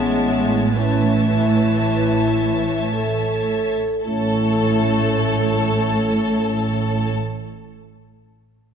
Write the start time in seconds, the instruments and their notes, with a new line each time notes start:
Already playing: double bass section A1, cello section A2, viola section G#3, clarinet B3, french horn section C#4 E4, violin section C#5 E5 A5
0.73 viola section E3, clarinet A3, french horn section C#4, violin section C#5 E5 A5
1.29 french horn section E4
2.93 french horn section A4
4.04 double bass section A1, cello section A2, clarinet A3, french horn section C#4 E4, violin section A4 C#5 A5, viola section A4